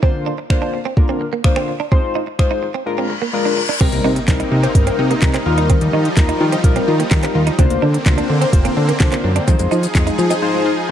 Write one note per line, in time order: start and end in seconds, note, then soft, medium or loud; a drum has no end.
0.03 0.30 D3 medium
0.03 0.30 A#3 medium
0.03 0.10 C4 medium
0.03 0.30 D4 medium
0.03 0.30 F4 medium
0.03 0.30 C5 loud
0.03 kick loud
0.26 0.34 D4 medium
0.38 muted clean electric guitar stroke soft
0.50 0.77 D3 medium
0.50 0.77 A#3 medium
0.50 0.77 D4 medium
0.50 0.77 F4 medium
0.50 0.77 C5 loud
0.50 finger snap loud
0.50 kick loud
0.62 0.70 D4 medium
0.74 muted clean electric guitar stroke soft
0.85 0.93 C4 medium
0.97 1.24 D3 medium
0.97 1.24 A#3 medium
0.97 1.24 D4 medium
0.97 1.24 F4 medium
0.97 1.24 A#4 loud
0.97 kick loud
1.09 1.17 C4 medium
1.21 muted clean electric guitar stroke soft
1.33 1.40 A#3 medium
1.44 1.71 D3 medium
1.44 1.71 A#3 medium
1.44 1.72 D4 medium
1.44 1.72 F4 medium
1.44 1.72 C5 loud
1.44 finger snap loud
1.44 kick loud
1.56 1.64 C4 medium
1.56 finger snap medium
1.68 muted clean electric guitar stroke soft
1.80 1.88 D4 medium
1.92 2.19 G#3 medium
1.92 1.99 C4 medium
1.92 2.19 D#4 medium
1.92 2.19 F4 medium
1.92 2.19 C5 loud
1.92 kick loud
2.15 2.23 D#4 medium
2.27 muted clean electric guitar stroke soft
2.39 2.66 G#3 loud
2.39 2.66 D#4 medium
2.39 2.66 F4 medium
2.39 2.66 C5 loud
2.39 finger snap loud
2.39 kick loud
2.51 2.58 D#4 medium
2.63 muted clean electric guitar stroke soft
2.74 2.82 C4 medium
2.86 3.13 G#3 medium
2.86 3.13 D4 medium
2.86 3.13 F4 medium
2.86 3.13 A#4 loud
2.86 reverse cymbal medium
2.98 3.06 C4 medium
3.10 muted clean electric guitar stroke soft
3.22 3.29 A#3 medium
3.33 3.60 G#3 medium
3.33 3.60 D4 medium
3.33 3.60 F4 medium
3.33 3.61 A#4 loud
3.45 3.53 D4 medium
3.57 muted clean electric guitar stroke soft
3.69 3.77 D4 medium
3.80 3.88 C2 loud
3.80 5.44 C3 medium
3.80 3.88 C3 loud
3.80 4.08 G3 loud
3.80 5.44 A#3 medium
3.80 4.08 C4 medium
3.80 3.89 C4 medium
3.80 7.55 D#4 medium
3.80 4.08 D#4 medium
3.80 4.08 A#4 loud
3.80 kick loud
3.80 closed hi-hat medium
3.80 crash loud
3.80 impact medium
3.92 4.00 C2 loud
3.92 4.00 A#3 medium
3.92 closed hi-hat medium
4.04 4.20 C3 medium
4.04 4.12 D#4 medium
4.16 muted clean electric guitar stroke soft
4.16 closed hi-hat medium
4.28 4.43 C2 medium
4.28 4.35 C3 medium
4.28 4.55 G3 medium
4.28 4.55 C4 medium
4.28 4.55 D#4 medium
4.28 4.55 A#4 loud
4.28 kick loud
4.28 snare medium
4.28 clap loud
4.28 closed hi-hat medium
4.40 4.48 D#4 medium
4.40 closed hi-hat soft
4.52 4.67 C3 loud
4.52 4.59 D#4 medium
4.52 muted clean electric guitar stroke soft
4.63 4.71 C4 medium
4.63 4.71 C5 medium
4.63 closed hi-hat medium
4.75 4.90 G1 loud
4.75 5.02 G3 medium
4.75 5.02 C4 medium
4.75 5.02 D#4 medium
4.75 5.02 A#4 medium
4.75 kick loud
4.75 closed hi-hat medium
4.87 4.94 A#3 medium
4.87 4.95 C4 medium
4.87 closed hi-hat medium
4.99 5.14 C3 loud
4.99 5.06 D#4 medium
4.99 muted clean electric guitar stroke soft
5.11 5.18 A#3 medium
5.11 closed hi-hat medium
5.22 5.38 C3 loud
5.22 5.30 C3 medium
5.22 5.45 G3 medium
5.22 5.46 C4 medium
5.22 5.45 D#4 medium
5.22 5.45 A#4 loud
5.22 kick loud
5.22 snare medium
5.22 clap loud
5.22 closed hi-hat medium
5.34 5.42 A#3 medium
5.34 5.42 C4 medium
5.34 clap medium
5.34 closed hi-hat medium
5.46 5.69 D#2 loud
5.46 7.57 F3 medium
5.46 6.03 G3 loud
5.46 7.57 G3 medium
5.46 6.03 D#4 medium
5.46 5.53 F4 medium
5.46 6.03 F4 medium
5.46 6.03 A#4 loud
5.46 muted clean electric guitar stroke soft
5.58 5.66 D#4 medium
5.58 closed hi-hat medium
5.70 5.77 D#3 medium
5.70 5.77 C4 medium
5.70 kick loud
5.70 closed hi-hat medium
5.81 5.89 D#2 loud
5.81 5.89 G3 medium
5.81 closed hi-hat soft
5.93 6.09 D#3 loud
5.93 6.01 D#4 medium
6.05 muted clean electric guitar stroke soft
6.05 closed hi-hat soft
6.17 6.32 D#2 medium
6.17 6.24 D#3 medium
6.17 6.44 G3 medium
6.17 6.44 D#4 medium
6.17 6.44 F4 medium
6.17 6.44 A#4 loud
6.17 kick loud
6.17 snare medium
6.17 clap loud
6.17 closed hi-hat medium
6.29 6.37 D#4 medium
6.29 closed hi-hat soft
6.40 6.56 D#3 loud
6.40 6.48 F4 medium
6.40 muted clean electric guitar stroke soft
6.52 6.60 C4 medium
6.52 6.60 D#5 medium
6.52 closed hi-hat medium
6.64 6.79 A#1 loud
6.64 6.91 G3 loud
6.64 6.91 D#4 medium
6.64 6.91 F4 medium
6.64 6.91 A#4 loud
6.64 kick loud
6.64 closed hi-hat medium
6.76 6.83 G3 medium
6.76 6.84 C4 medium
6.76 closed hi-hat medium
6.88 7.03 D#3 loud
6.88 6.95 F4 medium
6.88 muted clean electric guitar stroke soft
7.00 7.07 A#3 medium
7.00 closed hi-hat medium
7.11 7.27 D#3 loud
7.11 7.19 D#3 medium
7.11 7.38 G3 medium
7.11 7.38 D#4 medium
7.11 7.38 F4 medium
7.11 7.38 A#4 medium
7.11 kick loud
7.11 snare medium
7.11 clap loud
7.11 closed hi-hat medium
7.23 7.31 G3 medium
7.23 7.31 C4 medium
7.23 clap medium
7.23 closed hi-hat medium
7.35 7.50 D#2 medium
7.35 7.42 F4 medium
7.35 muted clean electric guitar stroke soft
7.47 7.55 D#4 medium
7.47 closed hi-hat medium
7.58 7.66 D2 loud
7.58 7.66 C3 loud
7.58 9.46 D3 medium
7.58 7.85 A#3 loud
7.58 9.46 A#3 medium
7.58 7.66 C4 medium
7.58 9.46 C4 medium
7.58 7.86 D4 medium
7.58 7.86 F4 medium
7.58 7.86 C5 loud
7.58 kick loud
7.58 closed hi-hat medium
7.70 7.78 D2 loud
7.70 7.78 A#3 medium
7.70 closed hi-hat soft
7.82 7.98 D3 loud
7.82 7.90 D4 medium
7.94 muted clean electric guitar stroke soft
7.94 closed hi-hat medium
8.06 8.21 D2 loud
8.06 8.13 C3 medium
8.06 8.33 A#3 medium
8.06 8.33 D4 medium
8.06 8.33 F4 medium
8.06 8.33 C5 loud
8.06 kick loud
8.06 snare medium
8.06 clap loud
8.06 closed hi-hat medium
8.18 8.25 D4 medium
8.18 closed hi-hat medium
8.30 8.45 D3 loud
8.30 8.37 D4 medium
8.30 muted clean electric guitar stroke soft
8.41 8.49 C4 medium
8.41 8.49 C5 medium
8.41 closed hi-hat medium
8.53 8.68 F1 loud
8.53 8.80 A#3 medium
8.53 8.80 D4 medium
8.53 8.80 F4 medium
8.53 8.80 C5 loud
8.53 kick loud
8.53 closed hi-hat medium
8.65 8.72 A#3 medium
8.65 8.73 C4 medium
8.65 closed hi-hat medium
8.77 8.92 D3 loud
8.77 8.84 D4 medium
8.77 muted clean electric guitar stroke soft
8.89 8.96 A#3 medium
8.89 closed hi-hat medium
9.00 9.08 C3 medium
9.00 9.16 D3 loud
9.00 9.27 A#3 medium
9.00 9.27 D4 medium
9.00 9.27 F4 medium
9.00 9.28 C5 loud
9.00 kick loud
9.00 snare medium
9.00 clap loud
9.00 closed hi-hat medium
9.12 9.20 A#3 medium
9.12 9.20 C4 medium
9.12 clap medium
9.12 closed hi-hat medium
9.24 9.39 F#2 medium
9.24 9.31 D4 medium
9.24 muted clean electric guitar stroke soft
9.36 9.44 D4 medium
9.36 closed hi-hat medium
9.47 9.55 F2 loud
9.47 9.55 D#3 loud
9.47 10.91 F3 medium
9.47 9.74 G#3 medium
9.47 9.55 C4 medium
9.47 9.75 D#4 medium
9.47 10.91 D#4 medium
9.47 9.75 F4 medium
9.47 10.91 G#4 medium
9.47 9.75 C5 medium
9.47 kick loud
9.47 closed hi-hat medium
9.47 shaker medium
9.59 9.67 F2 medium
9.59 9.67 G#3 medium
9.59 closed hi-hat medium
9.59 shaker medium
9.71 9.87 F3 loud
9.71 9.79 D#4 medium
9.71 shaker medium
9.83 muted clean electric guitar stroke soft
9.83 closed hi-hat soft
9.83 shaker medium
9.95 10.10 F2 medium
9.95 10.02 D#3 medium
9.95 10.22 G#3 medium
9.95 10.22 D#4 medium
9.95 10.22 F4 medium
9.95 10.22 G#4 medium
9.95 kick loud
9.95 snare medium
9.95 clap loud
9.95 closed hi-hat medium
9.95 shaker medium
10.07 10.14 D#4 medium
10.07 closed hi-hat medium
10.07 shaker soft
10.18 10.34 F3 loud
10.18 10.26 F4 medium
10.18 muted clean electric guitar stroke soft
10.18 shaker medium
10.30 10.38 C4 medium
10.30 10.38 D#5 medium
10.30 closed hi-hat medium
10.30 shaker medium
10.42 10.69 G#3 medium
10.42 10.69 D#4 medium
10.42 10.69 F4 medium
10.42 10.69 C5 loud
10.54 10.61 G#3 medium
10.66 10.73 F4 medium